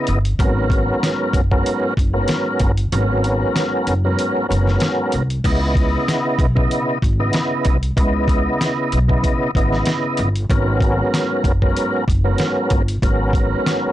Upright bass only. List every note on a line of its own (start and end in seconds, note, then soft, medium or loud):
0.08 0.33 G1 loud
0.39 0.89 G#1 loud
1.34 1.58 F#1 medium
1.97 2.22 F#1 medium
2.61 2.85 G1 loud
2.92 3.41 G#1 loud
3.87 4.12 F#1 medium
4.50 4.75 F#1 medium
5.14 5.38 C2 medium
5.45 5.94 C#2 loud
6.39 6.64 B1 medium
7.03 7.27 G#1 medium
7.66 7.90 C2 medium
7.97 8.46 C#2 loud
8.93 9.17 B1 medium
9.55 9.80 G#1 medium
10.19 10.43 G1 loud
10.50 10.99 G#1 loud
11.44 11.69 F#1 medium
12.08 12.33 F#1 medium
12.71 12.96 G1 loud
13.03 13.52 G#1 loud